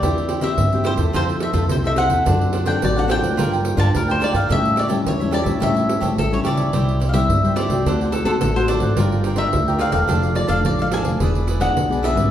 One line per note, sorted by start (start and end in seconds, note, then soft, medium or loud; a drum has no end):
0.00 0.50 E2 medium
0.00 0.56 E3 medium
0.00 0.40 C4 medium
0.00 0.27 E4 medium
0.00 0.40 E4 medium
0.00 0.40 G4 medium
0.00 0.28 G4 medium
0.00 0.29 C5 medium
0.00 0.46 D5 medium
0.00 pandeiro medium
0.04 0.30 E5 medium
0.18 pandeiro soft
0.28 0.41 E4 soft
0.28 0.41 G4 medium
0.28 0.41 C5 medium
0.28 0.42 E5 soft
0.28 pandeiro medium
0.41 0.67 C4 medium
0.41 0.52 E4 medium
0.41 0.67 E4 medium
0.41 0.52 G4 medium
0.41 0.67 G4 medium
0.41 0.53 C5 medium
0.41 0.53 E5 medium
0.41 0.83 E5 medium
0.41 pandeiro medium
0.58 0.94 G2 medium
0.58 1.11 E3 medium
0.58 pandeiro medium
0.72 0.96 C4 medium
0.72 0.97 E4 medium
0.72 0.97 G4 medium
0.72 0.84 G4 soft
0.72 0.85 C5 soft
0.72 0.85 E5 soft
0.72 pandeiro soft
0.84 0.98 E4 medium
0.84 0.98 G4 medium
0.84 0.97 C5 medium
0.84 0.94 C5 medium
0.84 0.96 E5 medium
0.84 pandeiro medium
0.97 1.11 E2 medium
0.97 1.51 C4 medium
0.97 1.51 E4 medium
0.97 1.13 G4 soft
0.97 1.51 A4 medium
0.97 1.12 C5 soft
0.97 1.12 E5 soft
0.97 pandeiro medium
1.13 1.50 F2 medium
1.13 1.68 F3 medium
1.13 1.27 F4 medium
1.13 1.27 A4 medium
1.13 1.28 C5 medium
1.13 1.23 C5 medium
1.13 1.27 E5 medium
1.13 pandeiro medium
1.28 1.52 A4 soft
1.28 1.53 C5 soft
1.28 1.53 E5 soft
1.28 pandeiro soft
1.40 1.50 E5 medium
1.40 pandeiro medium
1.53 1.67 F2 medium
1.53 1.78 C4 medium
1.53 1.79 E4 medium
1.53 1.64 F4 medium
1.53 1.64 A4 medium
1.53 1.79 A4 medium
1.53 1.64 C5 medium
1.53 1.65 E5 medium
1.53 pandeiro medium
1.69 2.06 C2 medium
1.69 2.23 C3 medium
1.69 1.76 C5 medium
1.69 pandeiro medium
1.84 2.22 C4 medium
1.84 2.22 E4 medium
1.84 2.22 A4 medium
1.84 1.97 A4 soft
1.84 1.97 C5 soft
1.84 1.97 E5 medium
1.84 1.92 E5 medium
1.84 pandeiro soft
1.96 2.10 F4 medium
1.96 2.10 A4 medium
1.96 2.10 C5 medium
1.96 2.08 E5 medium
1.96 2.64 F#5 loud
1.96 pandeiro medium
2.09 2.23 E2 medium
2.09 2.25 A4 soft
2.09 2.25 C5 soft
2.09 2.24 E5 medium
2.09 pandeiro medium
2.26 2.74 F#2 medium
2.26 2.80 F#3 medium
2.26 2.53 C4 medium
2.26 2.51 D4 medium
2.26 2.53 D4 medium
2.26 2.53 A4 medium
2.26 2.52 C5 medium
2.26 2.53 D5 medium
2.26 2.54 F#5 medium
2.26 pandeiro medium
2.41 pandeiro soft
2.52 2.64 D4 soft
2.52 2.64 C5 medium
2.52 2.65 D5 medium
2.52 2.65 F#5 medium
2.52 pandeiro medium
2.65 2.91 C4 medium
2.65 2.76 D4 medium
2.65 2.91 D4 medium
2.65 2.91 A4 medium
2.65 2.76 C5 medium
2.65 2.76 D5 medium
2.65 2.77 F#5 medium
2.65 2.82 G5 medium
2.65 pandeiro medium
2.81 3.18 A1 medium
2.81 3.35 F#3 medium
2.81 2.97 D5 medium
2.81 pandeiro medium
2.96 3.20 C4 medium
2.96 3.20 D4 medium
2.96 3.20 A4 medium
2.96 3.08 C5 soft
2.96 3.09 D5 soft
2.96 3.09 F#5 soft
2.96 3.04 F#5 medium
2.96 pandeiro soft
3.08 3.22 D4 medium
3.08 3.22 C5 medium
3.08 3.20 D5 medium
3.08 3.19 F#5 medium
3.08 3.77 G5 loud
3.08 pandeiro medium
3.21 3.35 D2 medium
3.21 3.74 D4 medium
3.21 3.75 F4 medium
3.21 3.75 A#4 medium
3.21 3.37 C5 soft
3.21 3.36 D5 soft
3.21 3.35 F#5 medium
3.21 pandeiro medium
3.37 3.74 G2 medium
3.37 3.91 G3 medium
3.37 3.51 F4 medium
3.37 3.51 A#4 medium
3.37 3.52 D5 medium
3.37 3.51 G5 medium
3.37 pandeiro medium
3.52 3.76 A#4 soft
3.52 3.77 D5 soft
3.52 3.77 G5 soft
3.52 pandeiro soft
3.65 pandeiro medium
3.76 3.91 G2 medium
3.76 4.02 D4 medium
3.76 3.88 F4 medium
3.76 4.02 F4 medium
3.76 4.02 A#4 medium
3.76 3.88 A#4 medium
3.76 3.88 D5 medium
3.76 3.89 G5 medium
3.76 3.85 A5 loud
3.76 pandeiro medium
3.94 4.30 D2 medium
3.94 4.47 D3 medium
3.94 4.10 A#4 medium
3.94 pandeiro medium
4.08 4.46 D4 medium
4.08 4.46 F4 medium
4.08 4.46 A#4 medium
4.08 4.19 A#4 soft
4.08 4.24 C5 medium
4.08 4.20 D5 soft
4.08 4.21 G5 soft
4.08 pandeiro soft
4.20 4.34 F4 medium
4.20 4.34 A#4 medium
4.20 4.32 D5 medium
4.20 4.31 G5 medium
4.20 pandeiro medium
4.24 4.36 D5 medium
4.32 4.47 G2 medium
4.32 4.48 A#4 soft
4.32 4.48 D5 soft
4.32 4.49 F5 medium
4.32 4.47 G5 soft
4.32 pandeiro medium
4.49 5.03 A2 medium
4.49 4.98 A2 medium
4.49 4.76 G3 soft
4.49 4.77 C#4 medium
4.49 4.77 E4 medium
4.49 4.75 G4 medium
4.49 4.76 A4 medium
4.49 4.76 C#5 medium
4.49 4.77 E5 medium
4.49 4.79 E5 loud
4.49 pandeiro medium
4.65 pandeiro soft
4.76 4.87 G4 soft
4.76 4.88 A4 soft
4.76 4.88 C#5 medium
4.76 4.87 D5 medium
4.76 4.88 E5 medium
4.76 pandeiro medium
4.88 5.15 G3 medium
4.88 5.15 C#4 medium
4.88 5.15 E4 medium
4.88 4.99 G4 medium
4.88 5.00 A4 medium
4.88 5.00 C#5 medium
4.88 5.00 E5 medium
4.88 pandeiro medium
5.06 5.42 E2 medium
5.06 5.59 E3 medium
5.06 5.36 C#5 medium
5.06 pandeiro medium
5.20 5.43 G3 medium
5.20 5.43 C#4 medium
5.20 5.44 E4 medium
5.20 5.31 A4 soft
5.20 5.32 C#5 soft
5.20 5.32 E5 medium
5.20 pandeiro soft
5.31 5.46 G4 medium
5.31 5.45 A4 medium
5.31 5.43 C#5 medium
5.31 5.42 D5 medium
5.31 5.42 E5 medium
5.31 pandeiro medium
5.44 5.59 A2 medium
5.44 5.56 G3 medium
5.44 5.56 C#4 medium
5.44 5.56 E4 medium
5.44 5.60 A4 soft
5.44 5.59 C#5 soft
5.44 5.59 E5 medium
5.44 pandeiro medium
5.60 6.14 A2 medium
5.60 5.98 A2 medium
5.60 5.99 G3 medium
5.60 5.99 C#4 medium
5.60 5.99 E4 medium
5.60 5.74 G4 medium
5.60 5.75 A4 medium
5.60 5.75 C#5 medium
5.60 5.74 E5 medium
5.60 6.15 E5 loud
5.60 pandeiro medium
5.75 6.00 A4 soft
5.75 6.00 C#5 soft
5.75 6.01 E5 soft
5.75 pandeiro soft
5.89 pandeiro medium
6.00 6.15 A2 medium
6.00 6.26 G3 medium
6.00 6.26 C#4 soft
6.00 6.26 E4 medium
6.00 6.11 G4 medium
6.00 6.12 A4 medium
6.00 6.12 C#5 medium
6.00 6.12 E5 medium
6.00 pandeiro medium
6.17 6.43 A1 medium
6.17 6.71 E3 medium
6.17 6.33 A4 medium
6.17 pandeiro medium
6.31 6.70 G3 medium
6.31 6.70 C#4 medium
6.31 6.70 E4 medium
6.31 6.44 A4 soft
6.31 6.44 C#5 soft
6.31 6.39 C#5 medium
6.31 6.45 E5 soft
6.31 pandeiro soft
6.44 6.71 C#2 medium
6.44 6.58 G4 medium
6.44 6.57 A4 medium
6.44 6.56 C#5 medium
6.44 7.11 D5 medium
6.44 6.55 E5 medium
6.44 pandeiro medium
6.56 6.72 A4 soft
6.56 6.71 C#5 soft
6.56 6.71 E5 soft
6.56 pandeiro medium
6.73 7.22 C2 medium
6.73 7.27 C3 medium
6.73 7.00 G3 soft
6.73 7.01 C4 medium
6.73 6.99 E4 medium
6.73 7.01 E4 medium
6.73 6.99 G4 medium
6.73 7.00 C5 medium
6.73 7.01 E5 medium
6.73 pandeiro medium
6.88 pandeiro soft
7.00 7.12 E4 medium
7.00 7.12 G4 soft
7.00 7.13 C5 medium
7.00 7.13 E5 medium
7.00 pandeiro medium
7.09 7.29 G3 medium
7.09 7.13 F5 medium
7.13 7.38 C4 medium
7.13 7.24 E4 medium
7.13 7.38 E4 medium
7.13 7.24 G4 medium
7.13 7.24 C5 medium
7.13 7.54 E5 medium
7.13 7.24 E5 medium
7.13 pandeiro medium
7.29 7.65 G2 medium
7.29 7.42 G3 medium
7.29 pandeiro medium
7.44 7.67 G3 medium
7.44 7.68 C4 medium
7.44 7.68 E4 medium
7.44 7.56 G4 soft
7.44 7.57 C5 soft
7.44 7.57 E5 soft
7.44 pandeiro soft
7.56 7.70 E4 medium
7.56 7.71 G4 medium
7.56 7.70 C5 medium
7.56 8.09 D5 medium
7.56 7.68 E5 medium
7.56 pandeiro medium
7.69 7.82 C2 medium
7.69 8.22 A3 medium
7.69 8.22 C4 medium
7.69 8.22 F#4 medium
7.69 7.85 G4 soft
7.69 7.84 C5 soft
7.69 7.84 E5 soft
7.69 pandeiro medium
7.84 8.21 D2 medium
7.84 8.38 D3 medium
7.84 7.99 D4 medium
7.84 8.00 A4 medium
7.84 8.00 C5 medium
7.84 pandeiro medium
7.89 8.00 F#5 medium
8.01 8.25 A4 soft
8.01 8.25 C5 soft
8.01 8.25 F#5 soft
8.01 pandeiro soft
8.12 8.24 A4 medium
8.12 pandeiro medium
8.24 8.38 D2 medium
8.24 8.50 A3 medium
8.24 8.50 C4 medium
8.24 8.36 D4 medium
8.24 8.50 F#4 medium
8.24 8.30 A4 medium
8.24 8.36 A4 medium
8.24 8.36 C5 medium
8.24 8.36 F#5 medium
8.24 pandeiro medium
8.40 8.77 A1 medium
8.40 8.94 A2 medium
8.40 8.55 A4 medium
8.40 pandeiro medium
8.55 8.93 A3 medium
8.55 8.93 C4 medium
8.55 8.93 F#4 medium
8.55 8.68 A4 soft
8.55 8.61 C5 medium
8.55 8.69 C5 soft
8.55 8.69 F#5 medium
8.55 pandeiro soft
8.68 8.82 D4 medium
8.68 8.82 A4 medium
8.68 8.81 C5 medium
8.68 9.41 D5 medium
8.68 8.80 F#5 medium
8.68 pandeiro medium
8.80 8.94 G#1 medium
8.80 8.97 A4 soft
8.80 8.96 C5 soft
8.80 8.95 F#5 soft
8.80 pandeiro medium
8.96 9.45 G1 medium
8.96 9.50 G3 medium
8.96 9.24 D4 soft
8.96 9.23 F4 soft
8.96 9.23 F4 medium
8.96 9.24 A#4 medium
8.96 9.25 D5 medium
8.96 9.25 G5 medium
8.96 pandeiro medium
9.12 pandeiro soft
9.24 9.35 F4 soft
9.24 9.36 A#4 soft
9.24 9.36 D5 medium
9.24 9.37 G5 medium
9.24 pandeiro medium
9.36 9.61 D4 medium
9.36 9.47 F4 medium
9.36 9.62 F4 medium
9.36 9.47 A#4 medium
9.36 9.62 A#4 medium
9.36 9.48 D5 medium
9.36 9.80 E5 medium
9.36 9.48 G5 medium
9.36 pandeiro medium
9.52 9.89 D2 medium
9.52 10.06 D3 medium
9.52 pandeiro medium
9.68 9.91 D4 medium
9.68 9.91 F4 medium
9.68 9.91 A#4 medium
9.68 9.78 A#4 soft
9.68 9.79 D5 soft
9.68 9.79 G5 soft
9.68 pandeiro soft
9.78 9.93 F4 medium
9.78 9.92 A#4 medium
9.78 9.91 D5 medium
9.78 9.91 F5 medium
9.78 9.90 G5 medium
9.78 pandeiro medium
9.91 10.06 E1 medium
9.91 10.45 A3 medium
9.91 10.45 D4 medium
9.91 10.46 A4 medium
9.91 10.07 A#4 soft
9.91 10.07 D5 soft
9.91 10.33 F5 medium
9.91 10.06 G5 soft
9.91 pandeiro medium
10.08 10.45 F1 medium
10.08 10.62 F3 medium
10.08 10.21 D4 medium
10.08 10.22 A4 medium
10.08 10.22 D5 medium
10.08 10.21 F5 medium
10.08 pandeiro medium
10.22 10.47 A4 soft
10.22 10.48 D5 soft
10.22 10.48 F5 soft
10.22 pandeiro soft
10.35 10.49 D5 medium
10.35 pandeiro medium
10.48 10.62 F1 medium
10.48 10.73 A3 medium
10.48 10.58 D4 medium
10.48 10.73 D4 medium
10.48 10.59 A4 medium
10.48 10.73 A4 medium
10.48 10.59 D5 medium
10.48 10.59 F5 medium
10.48 10.65 F5 medium
10.48 pandeiro medium
10.64 11.01 A1 medium
10.64 11.18 F3 medium
10.64 10.79 D5 medium
10.64 pandeiro medium
10.79 11.17 A3 medium
10.79 11.17 D4 medium
10.79 11.17 A4 medium
10.79 10.91 A4 soft
10.79 10.92 D5 soft
10.79 10.92 F5 soft
10.79 10.87 F5 medium
10.79 pandeiro soft
10.91 11.05 D4 medium
10.91 11.05 A4 medium
10.91 11.04 D5 medium
10.91 11.03 F5 medium
10.91 11.59 G#5 loud
10.91 pandeiro medium
11.04 11.17 F1 medium
11.04 11.20 A4 soft
11.04 11.19 D5 soft
11.04 11.19 F5 soft
11.04 pandeiro medium
11.20 11.68 E1 medium
11.20 11.74 E3 medium
11.20 11.47 B3 medium
11.20 11.47 D4 medium
11.20 11.46 E4 medium
11.20 11.47 G#4 medium
11.20 11.48 B4 medium
11.20 11.48 D5 medium
11.20 pandeiro medium
11.35 pandeiro soft
11.47 11.59 E4 medium
11.47 11.60 G#4 medium
11.47 11.60 B4 medium
11.47 11.60 D5 medium
11.47 pandeiro medium
11.59 11.85 B3 medium
11.59 11.85 D4 medium
11.59 11.71 E4 medium
11.59 11.85 G#4 medium
11.59 11.71 G#4 medium
11.59 11.71 B4 medium
11.59 11.71 D5 medium
11.59 12.04 F#5 medium
11.59 pandeiro medium
11.74 12.12 B1 medium
11.74 12.29 B2 medium
11.74 pandeiro medium
11.90 12.14 B3 medium
11.90 12.14 D4 medium
11.90 12.14 G#4 medium
11.90 12.03 G#4 soft
11.90 12.03 B4 soft
11.90 12.04 D5 soft
11.90 pandeiro soft
12.03 12.17 E4 medium
12.03 12.17 G#4 medium
12.03 12.16 B4 medium
12.03 12.15 D5 medium
12.03 12.31 E5 medium
12.03 pandeiro medium
12.15 12.29 G#1 medium
12.15 12.31 G3 medium
12.15 12.31 C#4 medium
12.15 12.31 E4 medium
12.15 12.31 G#4 soft
12.15 12.31 B4 soft
12.15 12.30 D5 soft
12.15 pandeiro medium